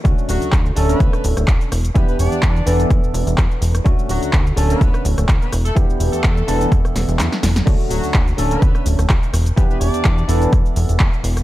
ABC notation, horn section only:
X:1
M:4/4
L:1/16
Q:"Swing 16ths" 1/4=126
K:Edor
V:1 name="Horn section"
z2 [F,F]3 z2 [B,B]3 z6 | [B,B] [B,B] [Dd]6 z8 | z2 [F,F]3 z2 [B,B]3 z3 [B,B] z [A,A] | z3 [A,A]6 z6 z |
z2 [F,F]3 z2 [B,B]3 z6 | [B,B] [B,B] [Dd]6 z8 |]